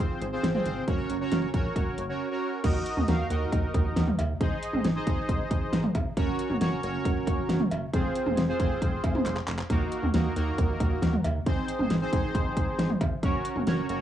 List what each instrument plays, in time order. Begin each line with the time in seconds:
Already playing: analog polysynth C4 F4 G#4 C5
0.00 analog synth bass G#1
0.21 analog synth bass G#1, closed hi-hat
0.32 analog polysynth C4 F4 G#4 C5
0.43 analog synth bass G#1, snare, closed hi-hat
0.54 analog polysynth C4 F4 G#4 C5, mid tom
0.66 analog synth bass G#1, closed hi-hat
0.88 analog synth bass F#1, analog polysynth C#4 F#4 A#4 C#5, kick, closed hi-hat
1.10 analog synth bass F#1, closed hi-hat
1.21 analog polysynth C#4 F#4 A#4 C#5
1.32 analog synth bass F#1, snare, closed hi-hat
1.54 analog synth bass A#1, analog polysynth C#4 F#4 A#4 C#5, kick, closed hi-hat
1.76 analog synth bass F#1, kick, closed hi-hat
1.98 analog synth bass F#1, closed hi-hat
2.09 analog polysynth C#4 F#4 A#4 C#5
2.31 analog polysynth C#4 F#4 A#4 C#5
2.64 analog synth bass D#2, analog polysynth D#4 F#4 A#4 D#5, kick, closed hi-hat, crash
2.86 closed hi-hat
2.97 analog synth bass D#2, mid tom
3.08 analog synth bass D#2, analog polysynth D#4 F#4 A#4 F5, snare, closed hi-hat
3.30 analog synth bass D#2, analog polysynth D#4 F#4 A#4 D#5, closed hi-hat
3.52 analog synth bass D#2, kick, closed hi-hat
3.74 analog synth bass D#2, kick, closed hi-hat
3.96 analog synth bass D#2, snare, closed hi-hat
4.08 mid tom
4.19 analog synth bass D#2, closed hi-hat, cowbell
4.41 analog synth bass G#1, analog polysynth D#4 G#4 C5 D#5, kick, closed hi-hat
4.63 closed hi-hat
4.73 analog synth bass G#1, mid tom
4.84 analog synth bass G#1, snare, closed hi-hat
4.96 analog polysynth D#4 G#4 C5 D#5
5.07 analog synth bass G#1, analog polysynth D#4 G#4 C5 D#5, kick, closed hi-hat
5.29 analog synth bass G#1, kick, closed hi-hat
5.51 analog synth bass G#1, kick, closed hi-hat
5.73 analog synth bass G#1, snare, closed hi-hat
5.84 mid tom
5.95 analog synth bass G#1, kick, closed hi-hat, cowbell
6.17 analog synth bass F#1, analog polysynth C#4 F#4 A#4 C#5, kick, closed hi-hat
6.39 closed hi-hat
6.50 analog synth bass F#1, mid tom
6.61 analog synth bass F#1, analog polysynth C#4 F#4 A#4 C#5, snare, closed hi-hat
6.83 analog synth bass F#1, analog polysynth C#4 F#4 A#4 C#5, closed hi-hat
7.05 analog synth bass F#1, kick, closed hi-hat
7.27 analog synth bass F#1, kick, closed hi-hat
7.49 analog synth bass F#1, snare, closed hi-hat
7.60 mid tom
7.71 analog synth bass F#1, closed hi-hat, cowbell
7.93 analog synth bass F1, analog polysynth C4 F4 G#4 C5, kick, closed hi-hat
8.15 closed hi-hat
8.26 analog synth bass F1, mid tom
8.37 analog synth bass F1, snare, closed hi-hat
8.49 analog polysynth C4 F4 G#4 C5
8.60 analog synth bass F1, analog polysynth C4 F4 G#4 C5, kick, closed hi-hat
8.82 analog synth bass F1, kick, closed hi-hat
9.04 analog synth bass F1, kick, closed hi-hat, cowbell
9.15 mid tom
9.26 analog synth bass F1, clap, closed hi-hat
9.37 clap
9.48 analog synth bass F1, clap, closed hi-hat
9.59 clap
9.70 analog synth bass D#2, analog polysynth A#3 D#4 F#4 A#4, kick, closed hi-hat
9.92 closed hi-hat
10.03 analog synth bass D#2, mid tom
10.14 analog synth bass D#2, analog polysynth A#3 D#4 F#4 A#4, snare, closed hi-hat
10.36 analog synth bass D#2, analog polysynth A#3 D#4 F#4 A#4, closed hi-hat
10.58 analog synth bass D#2, kick, closed hi-hat
10.80 analog synth bass D#2, kick, closed hi-hat
11.02 analog synth bass D#2, snare, closed hi-hat
11.13 mid tom
11.24 analog synth bass D#2, closed hi-hat, cowbell
11.46 analog synth bass G#1, analog polysynth C4 D#4 G#4 C5, kick, closed hi-hat
11.68 closed hi-hat
11.79 analog synth bass G#1, mid tom
11.90 analog synth bass G#1, snare, closed hi-hat
12.01 analog polysynth C4 D#4 G#4 C5
12.13 analog synth bass G#1, analog polysynth C4 D#4 G#4 C5, kick, closed hi-hat
12.35 analog synth bass G#1, kick, closed hi-hat
12.57 analog synth bass G#1, kick, closed hi-hat
12.79 analog synth bass G#1, snare, closed hi-hat
12.90 mid tom
13.01 analog synth bass G#1, kick, closed hi-hat, cowbell
13.23 analog synth bass F#1, analog polysynth C#4 F#4 A#4 C#5, kick, closed hi-hat
13.45 closed hi-hat
13.56 analog synth bass F#1, mid tom
13.67 analog synth bass F#1, analog polysynth C#4 F#4 A#4 C#5, snare, closed hi-hat
13.89 analog synth bass F#1, analog polysynth C#4 F#4 A#4 C#5, closed hi-hat